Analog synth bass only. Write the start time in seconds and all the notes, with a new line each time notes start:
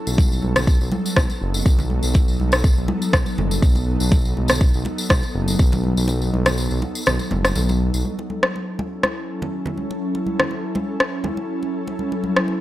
0.07 B1
0.43 B1
0.81 B1
1.17 B1
1.42 F#1
1.66 B1
2.04 B1
2.40 B1
2.78 B1
3.13 B1
3.38 F#1
3.63 B1
4.01 B1
4.37 B1
4.75 B1
5.10 B1
5.35 F#1
5.60 B1
5.97 B1
6.33 B1
6.71 B1
7.07 B1
7.32 F#1
7.57 B1
7.94 B1